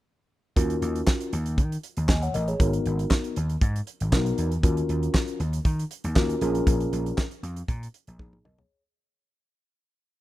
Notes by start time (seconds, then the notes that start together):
0.56 D#2 C#4 F4 F#4 A#4, kick, closed hi-hat
0.70 closed hi-hat
0.82 D#2, closed hi-hat
0.95 closed hi-hat
1.07 kick, snare, clap
1.21 closed hi-hat
1.33 D#2, closed hi-hat
1.46 closed hi-hat
1.58 D#3, kick, closed hi-hat
1.72 closed hi-hat
1.83 closed hi-hat
1.97 D#2, closed hi-hat
2.09 D#2 D#5 G#5, kick, snare, clap
2.22 C#5 F#5, closed hi-hat
2.34 A1 A#4 D#5, closed hi-hat
2.48 G#4 C#5, closed hi-hat
2.59 G#1 B3 D#4 F#4 A#4, kick, closed hi-hat
2.73 closed hi-hat
2.86 G#1, closed hi-hat
2.99 closed hi-hat
3.11 kick, snare, clap
3.24 closed hi-hat
3.36 D#2, closed hi-hat
3.50 closed hi-hat
3.61 G#2, kick, closed hi-hat
3.76 closed hi-hat
3.87 closed hi-hat
4.00 G#1, closed hi-hat
4.12 B1 B3 D#4 F#4 A#4, kick, snare, clap
4.26 closed hi-hat
4.38 E2, closed hi-hat
4.51 closed hi-hat
4.63 D#2 C#4 F4 F#4 A#4, kick, closed hi-hat
4.77 closed hi-hat
4.89 D#2, closed hi-hat
5.03 closed hi-hat
5.14 kick, snare, clap
5.28 closed hi-hat
5.40 D#2, closed hi-hat
5.53 closed hi-hat
5.65 D#3, kick, closed hi-hat
5.79 closed hi-hat
5.91 closed hi-hat
6.04 D#2, closed hi-hat
6.16 D#2 C#4 F4 F#4 A#4, kick, snare, clap
6.29 closed hi-hat
6.41 A#1 C#4 F4 G#4 A#4, closed hi-hat
6.55 closed hi-hat
6.67 A#1, kick, closed hi-hat
6.81 closed hi-hat
6.93 A#1, closed hi-hat
7.06 closed hi-hat
7.18 kick, snare, clap
7.31 closed hi-hat
7.43 F2, closed hi-hat
7.56 closed hi-hat
7.68 A#2, kick, closed hi-hat
7.83 closed hi-hat
7.94 closed hi-hat
8.07 A#1, closed hi-hat
8.19 A#1 D#4 G#4, kick, high tom
8.33 mid tom
8.45 B1 A#4 D#5, mid tom
8.58 G#4 C#5, floor tom